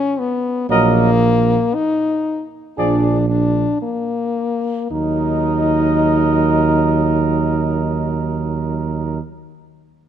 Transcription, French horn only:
Already playing: C#4
0.19 B3
0.70 A#3
1.75 D#4
2.78 D4
3.30 D4
3.82 A#3
4.91 D#4

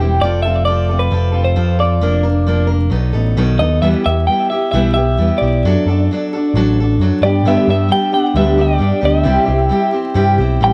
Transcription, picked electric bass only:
Already playing: E1
0.21 F1
1.12 F1
1.56 F2
2.01 F1
2.91 B1
3.14 A1
3.37 B1
3.60 D#2
3.83 E2
4.06 E2
4.73 B1
5.19 E2
5.42 B1
5.64 F#2
5.86 F#2
6.54 A1
6.99 F#2
7.21 G2
7.44 G2
7.68 G2
8.35 D2
8.80 G2
9.03 D2
9.25 C2
9.48 C2
10.15 G2
10.38 B1
10.61 A1

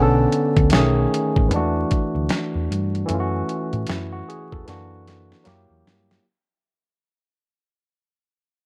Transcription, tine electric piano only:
Already playing: D3 B3 C#4
0.02 A4
0.71 D3 A3 C#4
0.75 D#3 G#4
1.48 E3 G#3
1.54 A3 D4 F#4
3.06 E3 A3
3.11 C#4 F4
3.20 F#4
3.89 E4
4.12 F#4
4.29 G#4
4.52 A4
4.65 E3 A#3 D4
4.70 F#4
5.44 F#3 A#3 E4
5.48 G4

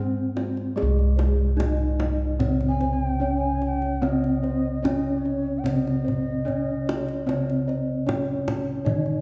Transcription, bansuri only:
Already playing: C5
2.68 G#5
2.93 G#5
3.06 G5
3.37 G#5
3.55 G#5
3.63 G#5
3.67 G5
4.08 D#5
5.18 C#5
5.58 G5
5.67 D#5

